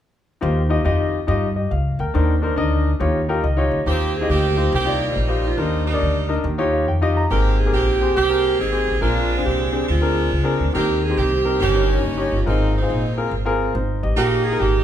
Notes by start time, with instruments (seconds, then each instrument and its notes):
0.41 upright bass D#2, grand piano D#3 D#4 F4 G4 C5
0.69 grand piano D#4 F4 G4 D#5
0.84 upright bass F2, grand piano D#4 F4 G4 D#5
1.27 upright bass G2, grand piano D#4 F4 G4 D#5
1.56 grand piano G4 D#5
1.71 upright bass C#2, grand piano F5
1.99 upright bass D2, grand piano A#4 G5
2.14 upright bass D#2, grand piano D#3 D4 D#4 A#4 C5
2.42 grand piano D4 D#4 A#4 C5
2.56 upright bass D2, grand piano D4 D#4 A#4 D#5
3.00 upright bass D#2, grand piano D#3 D#4 F4 G4 C#5
3.29 grand piano D#4 F4 G4 A#4 G5
3.44 upright bass C#2, grand piano D#5
3.57 grand piano D#4 F4 G4 C#5
3.71 upright bass D2
3.86 upright bass D#2, grand piano D#3 D#4 F4 G4 C5, saxophone section A#3 C4 G4
4.16 saxophone section G#4
4.21 grand piano D#4 F4 G4 D#5
4.29 upright bass D2, saxophone section A#3 C4 G4
4.57 grand piano D#4 F4 G4 C5
4.72 upright bass C2, saxophone section A#3 C4 G4
4.85 grand piano D#4 F4 G4 D5
5.08 saxophone section G3 C4 D#4
5.16 upright bass A#1
5.28 grand piano D#4 F4 G4 C5
5.45 saxophone section F4
5.57 upright bass D#2, grand piano D#3 D4 D#4 A#4 C5, saxophone section G3 A#3 D#4
5.86 saxophone section G3 A#3 D#4
5.93 grand piano D4 D#4 A#4 D5
6.02 upright bass D2
6.29 grand piano D4 D#4 A#4 D#5
6.44 upright bass D#2, grand piano D#3
6.58 grand piano D#4 F4 G4 C#5
6.73 grand piano F5
6.88 upright bass F2, grand piano G5
7.01 grand piano D#4 F4 G4 D#5
7.17 grand piano A#5
7.30 upright bass G#1, grand piano G#2 C4 G4 G#4 A#4, saxophone section A#3 C4 G4
7.58 saxophone section G#4
7.65 grand piano C4 G4 G#4 A#4
7.73 upright bass A#1, saxophone section A#3 C4 G4
8.01 grand piano C4 G4 G#4 C5
8.16 upright bass C2, saxophone section A#3 C4 G4
8.29 grand piano C4 G4 G#4 A#4
8.59 upright bass G#1, saxophone section C4 D#4 G#4
8.72 grand piano C4 G4 G#4 C5
8.88 upright bass A1
9.00 upright bass A#1, grand piano A#2 C4 D4 G#4 A#4, saxophone section G#3 D4 F4
9.37 grand piano C4 D4 G#4 C5
9.45 upright bass C2, saxophone section C4 D4 G4
9.72 grand piano C4 D4 G#4 C5
9.89 upright bass D2, saxophone section G#3 D4 F4
10.01 grand piano C4 D4 G#4 A#4
10.32 upright bass C#2
10.44 grand piano C4 D4 G#4 A#4
10.60 upright bass D2
10.73 upright bass D#2, grand piano D#3 C4 D#4 G4 A#4, saxophone section A#3 C4 G4
11.03 saxophone section G#4
11.09 grand piano C4 D#4 G4 C5
11.17 upright bass C2, saxophone section A#3 C4 G4
11.45 grand piano C4 D#4 G4 A#4
11.60 upright bass G1, grand piano G2, saxophone section A#3 C#4 G4
11.73 grand piano C#4 D#4 G4 A#4
11.97 saxophone section A#3 D#4
12.04 upright bass F#1
12.17 grand piano C#4 D#4 G4 C#5
12.32 upright bass G1, saxophone section F4
12.46 upright bass G#1, grand piano G#2 C4 F4 G#4 A#4, saxophone section A#3 C4 D#4
12.75 saxophone section A#3 C4 D#4
12.81 grand piano C4 F4 G#4 C5
12.90 upright bass A#1
13.17 grand piano C4 F4 G#4 A#4
13.31 upright bass G#1
13.45 grand piano C4 F4 G#4 A#4
13.75 upright bass G#1, grand piano D#4 C5
14.03 upright bass A1, grand piano G4 D#5
14.16 upright bass A#1, grand piano A#2 D#4 F4 G#4 A#4, saxophone section D#4 G4
14.45 saxophone section G#4
14.52 grand piano D#4 F4 G#4 A#4
14.60 upright bass G#1, saxophone section D#4 G4